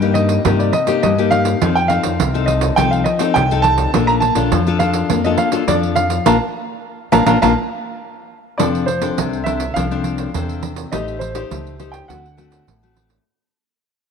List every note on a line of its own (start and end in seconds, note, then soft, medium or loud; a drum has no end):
0.00 0.36 G2 medium
0.00 0.42 G2 medium
0.00 0.41 A#3 medium
0.00 0.41 D#4 medium
0.00 0.41 G4 medium
0.00 0.17 G5 medium
0.00 pandeiro soft
0.14 0.60 D#5 loud
0.14 pandeiro medium
0.29 pandeiro medium
0.45 0.70 G2 medium
0.45 1.00 C3 medium
0.45 0.72 A#3 medium
0.45 0.72 D#4 medium
0.45 0.73 G4 medium
0.45 pandeiro medium
0.59 0.73 D5 medium
0.59 pandeiro soft
0.73 1.00 D#5 loud
0.73 pandeiro medium
0.87 1.12 A#3 medium
0.87 1.12 D#4 medium
0.87 1.13 G4 medium
0.87 pandeiro medium
1.03 1.58 G2 medium
1.03 1.53 G2 medium
1.03 1.33 D#5 loud
1.03 pandeiro medium
1.18 1.57 A#3 medium
1.18 1.57 D#4 medium
1.18 1.57 G4 medium
1.18 pandeiro soft
1.31 1.76 F5 loud
1.31 pandeiro medium
1.45 pandeiro medium
1.62 1.99 F2 medium
1.62 2.17 F3 medium
1.62 1.79 C4 medium
1.62 1.79 D#4 medium
1.62 1.79 A4 medium
1.62 pandeiro medium
1.75 1.89 G5 medium
1.75 pandeiro soft
1.88 2.17 C4 medium
1.88 2.18 D#4 medium
1.88 2.18 A4 medium
1.88 2.49 F5 loud
1.88 pandeiro medium
2.03 2.17 F2 medium
2.03 pandeiro medium
2.20 2.69 C2 loud
2.20 2.75 C3 medium
2.20 pandeiro medium
2.34 2.73 C4 medium
2.34 2.73 D#4 medium
2.34 2.74 A4 medium
2.34 pandeiro soft
2.46 2.74 D#5 medium
2.46 pandeiro medium
2.61 pandeiro medium
2.76 3.02 C2 medium
2.76 3.33 F3 medium
2.76 3.05 C4 medium
2.76 3.05 D#4 medium
2.76 3.05 A4 medium
2.76 2.92 G5 loud
2.76 pandeiro medium
2.91 3.05 F5 medium
2.91 pandeiro soft
3.04 3.32 D#5 medium
3.04 pandeiro medium
3.19 3.45 C4 medium
3.19 3.45 D#4 medium
3.19 3.45 A4 medium
3.19 pandeiro medium
3.34 3.85 C2 loud
3.34 3.91 C3 medium
3.34 3.62 G5 loud
3.34 pandeiro medium
3.51 3.90 C4 medium
3.51 3.90 D#4 medium
3.51 3.90 A4 medium
3.51 pandeiro soft
3.62 4.08 A5 loud
3.62 pandeiro medium
3.78 pandeiro medium
3.94 4.31 A#1 medium
3.94 4.49 A#3 medium
3.94 4.21 D4 medium
3.94 4.21 F4 medium
3.94 4.22 A4 medium
3.94 pandeiro medium
4.07 4.12 A#5 loud
4.07 pandeiro soft
4.20 4.76 A5 loud
4.20 pandeiro medium
4.35 4.49 A#1 medium
4.35 4.61 D4 medium
4.35 4.61 F4 medium
4.35 4.62 A4 medium
4.35 pandeiro medium
4.52 5.01 F2 medium
4.52 5.07 F3 medium
4.52 pandeiro medium
4.67 4.77 D4 medium
4.67 4.77 F4 medium
4.67 4.77 A4 medium
4.67 pandeiro soft
4.79 5.20 D4 medium
4.79 5.20 F4 medium
4.79 5.20 A4 medium
4.79 5.25 F5 loud
4.79 pandeiro medium
4.93 pandeiro medium
5.10 5.35 F2 medium
5.10 5.65 A#3 medium
5.10 pandeiro medium
5.24 5.50 D4 medium
5.24 5.50 F4 medium
5.24 5.50 A4 medium
5.24 5.29 D#5 medium
5.24 pandeiro soft
5.38 5.69 F5 medium
5.38 pandeiro medium
5.52 5.63 D4 medium
5.52 5.63 F4 medium
5.52 5.63 A4 medium
5.52 pandeiro medium
5.68 6.17 F2 loud
5.68 6.24 F3 medium
5.68 6.06 D4 medium
5.68 6.06 F4 medium
5.68 6.06 A4 medium
5.68 5.74 D5 loud
5.68 pandeiro medium
5.83 pandeiro soft
5.96 6.23 F5 loud
5.96 pandeiro medium
6.10 pandeiro medium
6.26 6.37 A#1 medium
6.26 6.36 A#3 loud
6.26 6.35 D4 medium
6.26 6.35 F4 loud
6.26 6.36 F5 loud
6.26 6.36 A5 medium
6.26 6.36 A#5 medium
6.26 pandeiro loud
7.12 7.24 A#1 medium
7.12 7.22 A#3 medium
7.12 7.22 D4 medium
7.12 7.22 F4 medium
7.12 7.22 F5 loud
7.12 7.22 A5 medium
7.12 7.22 A#5 loud
7.12 pandeiro loud
7.26 7.38 A#1 medium
7.26 7.37 A#3 loud
7.26 7.36 D4 loud
7.26 7.36 F4 medium
7.26 7.37 F5 loud
7.26 7.37 A5 medium
7.26 7.37 A#5 loud
7.26 pandeiro loud
7.42 7.53 A#1 medium
7.42 7.52 A#3 loud
7.42 7.52 D4 medium
7.42 7.52 F4 loud
7.42 7.52 F5 loud
7.42 7.52 A5 loud
7.42 7.52 A#5 medium
7.42 pandeiro medium
8.58 9.09 F1 medium
8.58 9.15 F3 medium
8.58 8.87 C4 medium
8.58 8.87 D4 medium
8.58 8.87 A4 medium
8.58 8.88 D5 medium
8.58 pandeiro medium
8.75 pandeiro soft
8.86 9.41 C5 medium
8.86 pandeiro medium
9.01 9.41 C4 medium
9.01 9.41 D4 medium
9.01 9.42 A4 medium
9.01 pandeiro medium
9.18 9.67 C2 medium
9.18 9.73 C3 medium
9.18 pandeiro medium
9.33 pandeiro soft
9.44 9.63 C4 medium
9.44 9.64 D4 medium
9.44 9.64 A4 medium
9.44 9.72 E5 medium
9.44 pandeiro medium
9.60 pandeiro medium
9.74 10.25 C2 medium
9.74 10.31 F3 medium
9.74 9.85 C4 soft
9.74 9.85 D4 medium
9.74 9.85 A4 medium
9.74 10.58 F5 medium
9.74 pandeiro medium
9.91 10.30 C4 medium
9.91 10.30 D4 medium
9.91 10.30 A4 medium
9.91 pandeiro soft
10.04 pandeiro medium
10.18 pandeiro medium
10.34 10.84 E2 medium
10.34 10.90 C3 medium
10.34 10.72 C4 medium
10.34 10.72 D4 medium
10.34 10.72 A4 medium
10.34 pandeiro medium
10.49 pandeiro soft
10.63 pandeiro medium
10.76 pandeiro medium
10.92 11.42 A1 medium
10.92 11.48 A3 medium
10.92 11.20 D#4 medium
10.92 11.20 G4 medium
10.92 11.21 C5 medium
10.92 11.19 D#5 medium
10.92 pandeiro medium
11.08 pandeiro soft
11.19 11.95 C5 medium
11.19 pandeiro medium
11.35 11.74 D#4 medium
11.35 11.75 G4 medium
11.35 11.75 C5 medium
11.35 pandeiro medium
11.51 12.00 C#2 medium
11.51 12.06 A3 medium
11.51 pandeiro medium
11.67 pandeiro soft
11.79 12.04 D#4 medium
11.79 12.04 G4 medium
11.79 12.05 C5 medium
11.79 pandeiro medium
11.92 12.06 G5 medium
11.92 pandeiro medium
12.08 12.59 D2 medium
12.08 12.64 D3 soft
12.08 12.26 A3 medium
12.08 12.26 C4 medium
12.08 12.27 F#4 medium
12.08 12.92 F#5 medium
12.08 pandeiro medium
12.26 pandeiro soft
12.37 12.65 A3 medium
12.37 12.65 C4 medium
12.37 12.66 F#4 medium
12.37 pandeiro medium
12.52 pandeiro medium
12.67 13.17 A1 medium
12.67 13.23 A2 soft
12.67 pandeiro medium
12.83 13.22 A3 medium
12.83 13.22 C4 medium
12.83 13.22 F#4 medium
12.83 pandeiro soft
12.97 pandeiro medium
13.10 pandeiro medium